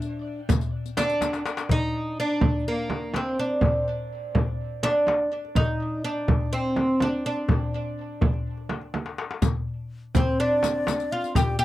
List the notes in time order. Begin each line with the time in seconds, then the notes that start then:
Already playing: D4
0.01 riq, darbuka ka
0.49 riq, darbuka dum, frame drum
0.61 riq, darbuka ka
0.86 riq
0.97 D4, riq, darbuka tek, frame drum
1.09 riq, darbuka ka
1.21 riq, darbuka tek, frame drum
1.33 riq, darbuka ka
1.46 riq, darbuka tek
1.57 riq, darbuka ka
1.69 D#4, frame drum, darbuka dum
2.20 D4
2.41 frame drum, darbuka dum
2.54 darbuka ka
2.68 A#3
2.90 darbuka tek, frame drum
3.14 C4, darbuka tek, frame drum
3.38 D4, darbuka ka
3.50 darbuka ka
3.61 frame drum, darbuka dum
4.35 frame drum, darbuka dum
4.48 darbuka ka
4.83 D4, darbuka tek, frame drum
5.07 darbuka tek, frame drum
5.32 darbuka ka
5.45 darbuka ka
5.55 D#4, frame drum, darbuka dum
6.04 D4
6.28 frame drum, darbuka dum
6.41 darbuka ka
6.53 C4
6.76 darbuka tek, frame drum
7.00 D4, darbuka tek, frame drum
7.25 D4, darbuka ka
7.37 darbuka ka
7.49 darbuka dum, frame drum
7.73 darbuka ka
8.21 darbuka dum, frame drum
8.33 darbuka ka
8.57 darbuka ka
8.69 darbuka tek, frame drum
8.81 darbuka ka
8.94 darbuka tek, frame drum
9.06 darbuka ka
9.18 darbuka tek
9.31 darbuka ka
9.42 riq, frame drum, darbuka dum
10.15 C4 C5, riq, frame drum, darbuka dum
10.27 darbuka ka
10.40 D4 D5
10.63 riq, darbuka tek, frame drum
10.87 riq, darbuka tek, frame drum
11.00 riq
11.12 F4 F5, darbuka ka
11.24 riq, darbuka ka
11.35 G4 G5, riq, frame drum, darbuka dum
11.59 G4 G5